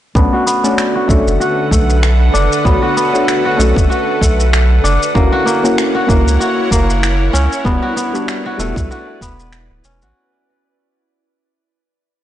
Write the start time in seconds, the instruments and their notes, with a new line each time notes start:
0.15 sub bass B1, synth drone D3 A4 B4 F#5, synth stab A3 C#4 D4 F#4, kora B3, kick, shaker
0.33 kora F#4
0.46 kora B3, shaker
0.64 synth stab A3 C#4 D4 F#4, shaker
0.78 finger snap, shaker
0.96 kora F#4
1.07 sub bass B1, synth stab A3 C#4 D4, kora A3, kick, shaker
1.11 synth stab F#4
1.27 sub bass F#1, shaker
1.40 kora F#4, shaker
1.71 sub bass B1, kora A3, kick, shaker
1.90 shaker
2.03 finger snap, shaker
2.34 sub bass F#1, kora D4, shaker
2.53 shaker
2.64 sub bass B1, synth stab A3 D4 F#4 C#5, kora B3, kick, shaker
2.82 kora F#4
2.97 kora B3, shaker
3.13 synth stab A3 D4 F#4 C#5, shaker
3.28 finger snap, shaker
3.45 kora F#4
3.57 sub bass B1, synth stab A3 C#4 D4, kora A3, shaker
3.61 synth stab F#4
3.76 sub bass F#1, kick, shaker
3.90 kora F#4, shaker
4.21 sub bass B1, kora A3, kick, shaker
4.40 shaker
4.53 finger snap, shaker
4.84 sub bass F#1, kora D4, shaker
5.03 shaker
5.15 sub bass F#1, synth stab A#3 C#4 E4 F#4, kora A#3, synth drone E4 A#4 C#5 F#5, kick, shaker
5.32 kora F#4
5.46 kora A#3, shaker
5.63 synth stab A#3 C#4 E4 F#4, shaker
5.78 finger snap, shaker
5.95 kora F#4
6.07 sub bass F#1, synth stab A#3 C#4 E4, kora A#3, kick, shaker
6.11 synth stab F#4
6.27 sub bass C#2, shaker
6.40 kora F#4, shaker
6.71 sub bass F#1, kora A#3, kick, shaker
6.90 shaker
7.03 finger snap, shaker
7.33 sub bass C#2, kora C#4, shaker
7.53 shaker
7.64 sub bass E1, synth stab G3 B3 D4 F#4, kora B3, synth drone B4 D5, kick, shaker
7.82 kora F#4
7.96 kora B3, shaker
8.13 synth stab G3 B3 D4 F#4, shaker
8.28 finger snap, shaker
8.46 kora F#4
8.57 sub bass E1, synth stab G3 B3 D4 F#4, kora A3, shaker
8.76 sub bass B1, kick, shaker
8.91 kora F#4, shaker
9.21 sub bass E1, kora B3, kick, shaker
9.40 shaker
9.52 finger snap, shaker
9.70 sub bass D1
9.84 sub bass E1, kora C#4, shaker
10.02 sub bass A1, kora F#4, shaker